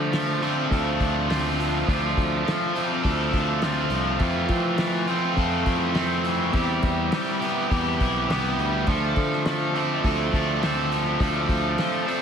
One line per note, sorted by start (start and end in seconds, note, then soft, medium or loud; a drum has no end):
0.00 0.66 D3 medium
0.00 0.12 F3 medium
0.00 0.44 F3 medium
0.00 0.43 A3 loud
0.00 0.43 D4 medium
0.00 0.42 F4 medium
0.13 1.59 F3 medium
0.13 snare loud
0.13 open hi-hat medium
0.42 1.27 F3 medium
0.42 1.29 A3 medium
0.42 1.30 C4 medium
0.42 1.28 D4 medium
0.42 1.31 F4 medium
0.42 open hi-hat soft
0.71 0.97 D2 medium
0.71 3.03 A4 medium
0.71 kick medium
0.71 open hi-hat medium
0.99 1.83 D2 medium
0.99 2.46 D4 medium
0.99 kick medium
0.99 open hi-hat medium
1.28 1.86 F3 medium
1.28 1.88 A3 medium
1.28 2.75 C4 medium
1.28 1.86 D4 medium
1.28 1.90 F4 medium
1.28 snare loud
1.28 open hi-hat medium
1.59 1.88 F3 medium
1.59 open hi-hat medium
1.87 2.14 D2 medium
1.87 2.77 F3 medium
1.87 2.44 F3 medium
1.87 2.75 A3 medium
1.87 2.73 D4 medium
1.87 2.73 F4 loud
1.87 kick medium
1.87 open hi-hat medium
2.17 2.43 D2 medium
2.17 kick medium
2.17 open hi-hat soft
2.45 3.91 F3 medium
2.45 snare loud
2.45 open hi-hat medium
2.74 3.61 F3 medium
2.74 3.61 A3 medium
2.74 3.63 C4 medium
2.74 3.61 D4 medium
2.74 3.60 F4 medium
2.74 open hi-hat soft
3.04 3.31 D2 medium
3.04 4.20 A4 medium
3.04 kick medium
3.04 open hi-hat medium
3.33 3.87 D2 medium
3.33 4.21 D4 medium
3.33 kick medium
3.33 open hi-hat medium
3.62 4.19 F3 medium
3.62 4.18 A3 medium
3.62 5.09 C4 medium
3.62 4.20 D4 medium
3.62 4.20 F4 medium
3.62 snare loud
3.62 open hi-hat medium
3.90 4.17 C2 medium
3.90 4.21 F3 medium
3.90 open hi-hat soft
4.19 4.47 F2 medium
4.19 4.78 E3 medium
4.19 5.05 A3 medium
4.19 5.09 C4 medium
4.19 5.06 F4 medium
4.19 kick medium
4.19 open hi-hat medium
4.49 5.33 F3 medium
4.49 kick medium
4.49 open hi-hat soft
4.78 6.25 E3 medium
4.78 snare loud
4.78 open hi-hat medium
5.07 5.93 A3 medium
5.07 5.96 C4 medium
5.07 5.95 C4 medium
5.07 5.93 F4 medium
5.07 open hi-hat soft
5.37 5.63 F2 medium
5.37 6.54 A4 medium
5.37 kick medium
5.37 open hi-hat medium
5.66 6.49 F2 medium
5.66 6.54 E4 medium
5.66 kick medium
5.66 open hi-hat soft
5.94 6.51 A3 medium
5.94 7.43 C4 medium
5.94 6.53 C4 medium
5.94 snare loud
5.94 open hi-hat medium
6.24 6.55 E3 medium
6.24 open hi-hat soft
6.52 6.80 E2 medium
6.52 7.39 E3 medium
6.52 7.13 G3 medium
6.52 8.88 C4 medium
6.52 7.40 E4 medium
6.52 7.39 G4 medium
6.52 kick loud
6.52 open hi-hat medium
6.83 7.09 E2 medium
6.83 kick medium
6.83 open hi-hat medium
7.12 8.59 G3 medium
7.12 snare loud
7.12 open hi-hat medium
7.40 8.28 E3 medium
7.40 8.28 B3 medium
7.40 8.27 E4 medium
7.40 8.26 G4 medium
7.40 open hi-hat soft
7.71 7.97 E2 medium
7.71 8.88 G4 medium
7.71 kick loud
7.71 open hi-hat medium
8.00 8.26 B1 medium
8.00 8.88 E4 medium
8.00 kick medium
8.00 open hi-hat medium
8.29 8.55 C2 medium
8.29 8.85 E3 medium
8.29 8.87 B3 medium
8.29 8.86 E4 medium
8.29 8.87 G4 medium
8.29 snare loud
8.29 open hi-hat medium
8.58 8.84 D2 medium
8.58 8.88 G3 medium
8.58 open hi-hat soft
8.87 9.13 D2 loud
8.87 9.77 F3 medium
8.87 9.47 F3 medium
8.87 9.76 A3 medium
8.87 9.75 D4 medium
8.87 kick loud
8.87 open hi-hat medium
8.91 9.74 A4 medium
9.16 10.00 D3 medium
9.16 kick medium
9.16 open hi-hat soft
9.32 snare soft
9.46 10.92 F3 medium
9.46 snare loud
9.46 open hi-hat medium
9.74 10.61 F3 medium
9.74 10.62 A3 medium
9.74 10.63 C4 medium
9.74 10.60 D4 medium
9.74 10.64 A4 medium
9.74 open hi-hat soft
10.04 10.30 D2 medium
10.04 12.22 A4 medium
10.04 kick medium
10.04 open hi-hat medium
10.33 11.16 D2 medium
10.33 11.79 D4 medium
10.33 kick medium
10.33 open hi-hat soft
10.61 11.19 F3 medium
10.61 11.20 A3 medium
10.61 12.07 C4 medium
10.61 11.19 D4 medium
10.61 11.23 A4 medium
10.61 snare loud
10.61 open hi-hat medium
10.92 11.22 F3 medium
10.92 open hi-hat soft
11.19 11.47 D2 medium
11.19 12.09 F3 medium
11.19 11.79 F3 medium
11.19 12.08 A3 medium
11.19 12.06 D4 loud
11.19 12.06 A4 medium
11.19 kick loud
11.19 open hi-hat medium
11.49 11.75 D2 medium
11.49 kick medium
11.49 open hi-hat medium
11.78 12.22 F3 medium
11.78 snare loud
11.78 open hi-hat medium
12.06 12.22 F3 medium
12.06 12.22 A3 medium
12.06 12.22 C4 medium
12.06 12.22 D4 medium
12.06 12.22 A4 medium
12.06 open hi-hat soft